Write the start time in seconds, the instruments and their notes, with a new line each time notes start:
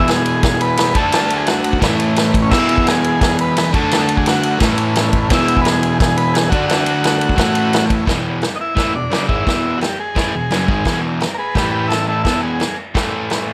Already playing: overdriven electric guitar E2 B2 E3, transistor combo organ B3 E4 G#4
0.08 transistor combo organ G#4, snare, ride
0.26 ride
0.43 transistor combo organ G#4, kick, snare, ride
0.61 transistor combo organ B4, ride
0.77 snare, ride
0.94 overdriven electric guitar D3 A3 D4, transistor combo organ F#3 D4 F#4 A4, kick, ride
1.12 snare, ride
1.30 ride
1.36 transistor combo organ G#4
1.47 transistor combo organ F#4, snare, ride
1.64 ride
1.73 kick
1.79 overdriven electric guitar A2 E3 A3, transistor combo organ C#4 E4 A4, kick, ride
1.83 snare
2.00 ride
2.16 snare, ride
2.34 kick, ride
2.42 transistor combo organ C#4
2.49 overdriven electric guitar E2 B2, transistor combo organ B3 E4 G#4, kick, snare, crash
2.54 overdriven electric guitar E3
2.69 ride
2.78 kick
2.87 transistor combo organ G#4, snare, ride
3.04 ride
3.21 transistor combo organ G#4, kick, snare, ride
3.39 transistor combo organ B4, ride
3.57 snare, ride
3.72 overdriven electric guitar D3 A3 D4, transistor combo organ F#3 D4 F#4 A4, kick, ride
3.91 snare, ride
4.09 ride
4.17 transistor combo organ G#4, kick
4.26 transistor combo organ F#4, snare, ride
4.43 ride
4.59 overdriven electric guitar A2 E3 A3, transistor combo organ C#4 E4 A4, kick, snare, ride
4.78 ride
4.96 snare, ride
5.13 kick, ride
5.29 overdriven electric guitar E2 B2 E3, transistor combo organ B3 E4 G#4, kick, snare, ride
5.34 transistor combo organ E4
5.48 ride
5.57 kick
5.62 transistor combo organ G#4 B4, ride
5.66 snare
5.83 ride
6.00 transistor combo organ G#4, kick, snare, ride
6.17 transistor combo organ B4, ride
6.33 transistor combo organ G#4, snare, ride
6.49 overdriven electric guitar D3, transistor combo organ F#3 D4 F#4 A4, kick, ride
6.53 overdriven electric guitar A3 D4
6.68 transistor combo organ F#4, snare, ride
6.86 ride
7.04 snare, ride
7.21 ride
7.29 kick
7.34 overdriven electric guitar A2, transistor combo organ C#4 E4 A4
7.38 overdriven electric guitar E3 A3, kick, snare, ride
7.55 ride
7.73 snare, ride
7.90 kick, ride
8.07 overdriven electric guitar E2 B2 E3, kick, snare, crash
8.42 snare, crash
8.55 transistor combo organ D#4
8.61 transistor combo organ E4
8.75 overdriven electric guitar A2 E3 A3, transistor combo organ E4, kick, snare, crash
8.94 overdriven electric guitar E2 B2, transistor combo organ D4
9.10 overdriven electric guitar F#2 C#3 F#3, snare, crash
9.27 overdriven electric guitar G#2 D#3 G#3, transistor combo organ E4, kick
9.46 overdriven electric guitar E2 B2 E3, kick, snare, crash
9.78 transistor combo organ F#4, crash
9.82 transistor combo organ G4, snare
10.00 transistor combo organ G#4
10.15 overdriven electric guitar A2 E3 A3, kick, snare, crash
10.35 overdriven electric guitar E2 B2
10.51 overdriven electric guitar F#2 C#3 F#3, snare, crash
10.68 overdriven electric guitar G#2 D#3 G#3, kick
10.85 overdriven electric guitar E2 B2 E3, kick, snare, crash
11.20 snare, crash
11.34 transistor combo organ A#4
11.38 transistor combo organ G#4 B4
11.55 overdriven electric guitar A2 E3 A3, transistor combo organ G4 B4, kick, snare, crash
11.71 transistor combo organ G4 B4
11.87 transistor combo organ E4 A4, crash
11.92 snare
12.08 transistor combo organ E4 A4
12.23 overdriven electric guitar E2 B2 E3, transistor combo organ E4 A4, kick, snare, crash
12.43 transistor combo organ G#4
12.60 snare, crash
12.94 overdriven electric guitar A2 E3 A3, kick, snare, crash
13.30 snare, crash